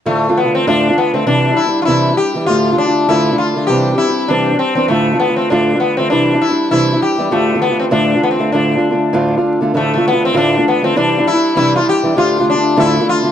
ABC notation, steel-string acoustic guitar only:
X:1
M:4/4
L:1/16
Q:"Swing" 1/4=198
K:Ddor
V:1 name="Steel-string acoustic guitar"
[D,,A,,D,A,DF]3 [D,A,DF]2 [D,A,DF]3 [D,,A,,D,A,DF]3 [D,A,DF]3 [D,A,DF]2 | [C,E,G,DE]3 [G,DE]2 [G,DE]3 [C,E,G,DE]3 [G,DE]3 [E,G,DE]2 | [D,,A,,D,A,DF]3 [D,A,DF]2 [D,A,DF]3 [D,,A,,D,A,DF]3 [D,A,DF]3 [D,A,DF]2 | [C,E,G,CD]3 [G,CD]2 [G,CD]3 [C,E,G,CD]3 [G,CD]3 [E,G,CD]2 |
[D,,A,,D,A,DF]3 [D,A,DF]2 [D,A,DF]3 [D,,A,,D,A,DF]3 [D,A,DF]3 [D,A,DF]2 | [C,E,G,DE]3 [G,DE]2 [G,DE]3 [C,E,G,DE]3 [G,DE]3 [E,G,DE]2 | [D,,A,,D,A,DF]3 [D,A,DF]2 [D,A,DF]3 [D,,A,,D,A,DF]3 [D,A,DF]3 [D,A,DF]2 | [D,,A,,D,A,DF]3 [D,A,DF]2 [D,A,DF]3 [D,,A,,D,A,DF]3 [D,A,DF]3 [D,A,DF]2 |
[D,,A,,D,A,DF]3 [D,A,DF]2 [D,A,DF]3 [D,,A,,D,A,DF]3 [D,A,DF]3 [D,A,DF]2 | [C,E,G,DE]3 [G,DE]2 [G,DE]3 [C,E,G,DE]3 [G,DE]3 [E,G,DE]2 | [D,,A,,D,A,DF]3 [D,A,DF]2 [D,A,DF]3 [D,,A,,D,A,DF]3 [D,A,DF]3 [D,A,DF]2 |]